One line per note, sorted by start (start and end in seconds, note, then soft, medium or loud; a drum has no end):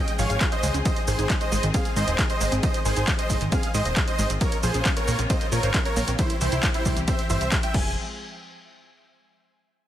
0.00 0.82 F3 medium
0.00 4.37 G#3 medium
0.00 4.37 C4 medium
0.00 4.37 G#4 medium
0.00 0.12 D#5 medium
0.00 0.12 G5 medium
0.08 closed hi-hat medium
0.08 shaker soft
0.19 0.26 G#1 loud
0.19 0.26 F3 loud
0.19 0.42 C#5 medium
0.19 0.42 F5 medium
0.19 open hi-hat loud
0.19 shaker medium
0.30 0.37 G#1 medium
0.30 0.37 F5 loud
0.30 closed hi-hat medium
0.30 shaker soft
0.41 0.46 F4 medium
0.41 kick loud
0.41 clap loud
0.41 closed hi-hat medium
0.41 ride medium
0.41 shaker soft
0.52 0.76 C5 medium
0.52 0.76 D#5 loud
0.52 closed hi-hat medium
0.52 shaker soft
0.63 0.71 C#2 loud
0.63 0.68 G#3 loud
0.63 open hi-hat loud
0.63 shaker medium
0.74 0.82 C#2 medium
0.74 0.81 C#4 medium
0.74 closed hi-hat medium
0.74 shaker soft
0.85 4.37 D#3 medium
0.85 0.88 D#3 loud
0.85 1.01 C5 medium
0.85 1.01 D#5 loud
0.85 kick loud
0.85 closed hi-hat medium
0.85 ride medium
0.85 shaker soft
0.96 closed hi-hat medium
0.96 shaker soft
1.08 1.15 G#1 loud
1.08 1.15 D#3 loud
1.08 1.31 G#4 medium
1.08 1.31 C5 medium
1.08 open hi-hat loud
1.08 shaker medium
1.19 1.26 G#1 medium
1.19 1.22 D#4 medium
1.19 closed hi-hat medium
1.19 shaker soft
1.30 1.35 D#4 medium
1.30 kick loud
1.30 clap loud
1.30 closed hi-hat medium
1.30 ride medium
1.30 shaker soft
1.41 1.65 C5 medium
1.41 1.65 D#5 loud
1.41 closed hi-hat medium
1.41 shaker soft
1.52 1.60 G#1 medium
1.52 1.57 G#3 loud
1.52 open hi-hat loud
1.52 shaker medium
1.63 1.71 G#1 medium
1.63 1.70 D#3 loud
1.63 closed hi-hat medium
1.63 shaker soft
1.74 1.77 C4 loud
1.74 1.90 G#4 medium
1.74 1.90 F5 medium
1.74 kick loud
1.74 closed hi-hat medium
1.74 ride medium
1.74 shaker soft
1.85 closed hi-hat medium
1.85 shaker soft
1.96 2.04 G#2 loud
1.96 2.03 D#3 loud
1.96 2.20 C5 medium
1.96 2.20 D#5 medium
1.96 open hi-hat loud
1.96 shaker medium
2.08 2.15 D#1 medium
2.08 2.15 D#5 loud
2.08 closed hi-hat medium
2.08 shaker soft
2.19 2.23 D#4 medium
2.19 kick loud
2.19 clap loud
2.19 closed hi-hat medium
2.19 ride medium
2.19 shaker soft
2.30 2.54 C5 medium
2.30 2.54 D#5 loud
2.30 closed hi-hat medium
2.30 shaker soft
2.41 2.48 G#1 loud
2.41 2.46 G#3 loud
2.41 open hi-hat loud
2.41 shaker medium
2.52 2.60 G#1 medium
2.52 2.59 C4 medium
2.52 closed hi-hat medium
2.52 shaker soft
2.63 2.66 D#3 loud
2.63 2.79 C5 medium
2.63 2.79 D#5 loud
2.63 kick loud
2.63 closed hi-hat medium
2.63 ride medium
2.63 shaker soft
2.74 closed hi-hat medium
2.74 shaker soft
2.85 2.93 G#1 loud
2.85 2.92 D#3 loud
2.85 3.09 G#4 medium
2.85 3.09 C5 medium
2.85 open hi-hat loud
2.85 shaker medium
2.96 3.04 G#1 medium
2.96 2.99 D#4 medium
2.96 closed hi-hat medium
2.96 shaker soft
3.08 3.12 D#4 medium
3.08 kick loud
3.08 clap loud
3.08 closed hi-hat medium
3.08 ride medium
3.08 shaker soft
3.19 3.42 C5 medium
3.19 3.42 D#5 loud
3.19 closed hi-hat medium
3.19 shaker soft
3.30 3.37 G#1 medium
3.30 3.35 G#3 loud
3.30 kick medium
3.30 open hi-hat loud
3.30 shaker medium
3.41 3.49 G#1 medium
3.41 3.48 D#3 loud
3.41 closed hi-hat medium
3.41 shaker soft
3.52 3.55 C4 loud
3.52 3.68 G#4 medium
3.52 3.68 F5 medium
3.52 kick loud
3.52 closed hi-hat medium
3.52 ride medium
3.52 shaker soft
3.63 closed hi-hat medium
3.63 shaker soft
3.74 3.82 G#2 loud
3.74 3.81 D#3 loud
3.74 3.98 C5 medium
3.74 3.98 D#5 medium
3.74 open hi-hat loud
3.74 shaker medium
3.85 3.93 D#1 medium
3.85 3.92 D#5 loud
3.85 closed hi-hat medium
3.85 shaker soft
3.97 4.01 D#4 medium
3.97 kick loud
3.97 clap loud
3.97 closed hi-hat medium
3.97 ride medium
3.97 shaker soft
4.08 4.31 C5 medium
4.08 4.31 D#5 loud
4.08 closed hi-hat medium
4.08 shaker soft
4.19 4.26 G#1 loud
4.19 4.24 G#3 loud
4.19 open hi-hat loud
4.19 shaker medium
4.30 4.37 G#1 medium
4.30 4.37 C4 medium
4.30 closed hi-hat medium
4.30 shaker soft
4.41 6.17 C#3 medium
4.41 4.44 F3 loud
4.41 6.17 A#3 medium
4.41 6.17 C4 medium
4.41 6.17 F4 medium
4.41 4.57 A#4 medium
4.41 4.57 C#5 loud
4.41 kick loud
4.41 closed hi-hat medium
4.41 ride medium
4.41 shaker soft
4.52 closed hi-hat medium
4.52 shaker soft
4.63 4.71 A#1 medium
4.63 4.70 F3 loud
4.63 4.87 G#4 medium
4.63 4.87 C5 medium
4.63 open hi-hat loud
4.63 shaker medium
4.74 4.82 A#1 medium
4.74 4.77 C#4 medium
4.74 closed hi-hat medium
4.74 shaker soft
4.85 4.90 C#4 medium
4.85 kick loud
4.85 clap loud
4.85 closed hi-hat medium
4.85 ride medium
4.85 shaker soft
4.97 5.20 A#4 medium
4.97 5.20 C#5 loud
4.97 closed hi-hat medium
4.97 shaker soft
5.08 5.15 A#1 loud
5.08 5.12 A#3 loud
5.08 open hi-hat loud
5.08 shaker medium
5.19 5.26 A#1 medium
5.19 5.26 F3 loud
5.19 closed hi-hat medium
5.19 shaker soft
5.30 5.33 C4 loud
5.30 5.46 C5 medium
5.30 5.46 D#5 medium
5.30 kick loud
5.30 closed hi-hat medium
5.30 ride medium
5.30 shaker soft
5.41 closed hi-hat medium
5.41 shaker soft
5.52 5.60 A#2 loud
5.52 5.59 F3 loud
5.52 5.76 A#4 medium
5.52 5.76 C#5 loud
5.52 open hi-hat loud
5.52 shaker medium
5.63 5.71 G#1 medium
5.63 5.70 C5 loud
5.63 closed hi-hat medium
5.63 shaker soft
5.74 5.79 C#4 medium
5.74 kick loud
5.74 clap loud
5.74 closed hi-hat medium
5.74 ride medium
5.74 shaker soft
5.85 6.09 A#4 medium
5.85 6.09 C#5 loud
5.85 closed hi-hat medium
5.85 shaker soft
5.96 6.04 A#1 loud
5.96 6.01 A#3 loud
5.96 open hi-hat loud
5.96 shaker medium
6.08 6.15 A#1 medium
6.08 6.15 C4 medium
6.08 closed hi-hat medium
6.08 shaker soft
6.19 7.73 E3 medium
6.19 6.22 E3 loud
6.19 7.73 G3 medium
6.19 7.73 C4 medium
6.19 6.35 E4 medium
6.19 7.73 G4 medium
6.19 6.35 C5 loud
6.19 kick loud
6.19 closed hi-hat medium
6.19 ride medium
6.19 shaker soft
6.30 closed hi-hat medium
6.30 shaker soft
6.41 6.48 C2 medium
6.41 6.48 E3 loud
6.41 6.65 E4 medium
6.41 6.65 C5 medium
6.41 open hi-hat loud
6.41 shaker medium
6.52 6.60 C2 medium
6.52 6.55 E4 medium
6.52 closed hi-hat medium
6.52 shaker soft
6.63 6.68 E4 medium
6.63 kick loud
6.63 clap loud
6.63 closed hi-hat medium
6.63 ride medium
6.63 shaker soft
6.74 6.98 E4 medium
6.74 6.98 C5 loud
6.74 closed hi-hat medium
6.74 shaker soft
6.85 6.93 C2 loud
6.85 6.90 G3 loud
6.85 kick medium
6.85 open hi-hat loud
6.85 shaker medium
6.97 7.04 C2 medium
6.97 7.04 E3 loud
6.97 closed hi-hat medium
6.97 shaker soft
7.08 7.11 C4 loud
7.08 7.24 C5 medium
7.08 7.24 E5 medium
7.08 kick loud
7.08 closed hi-hat medium
7.08 ride medium
7.08 shaker soft
7.19 closed hi-hat medium
7.19 shaker soft
7.30 7.37 G1 loud
7.30 7.37 E3 loud
7.30 7.54 C5 medium
7.30 7.54 E5 medium
7.30 open hi-hat loud
7.30 shaker medium
7.41 7.49 C2 medium
7.41 7.48 E5 loud
7.41 closed hi-hat medium
7.41 shaker soft
7.52 7.57 E4 medium
7.52 kick loud
7.52 clap loud
7.52 closed hi-hat medium
7.52 ride medium
7.52 shaker soft
7.63 7.74 E5 medium
7.63 7.74 G5 loud
7.63 closed hi-hat medium
7.63 shaker soft
7.74 7.95 F1 loud
7.74 7.95 F3 medium
7.74 7.95 G#3 medium
7.74 7.95 C4 medium
7.74 7.95 G#4 medium
7.74 7.91 G#5 medium
7.74 kick loud
7.74 crash medium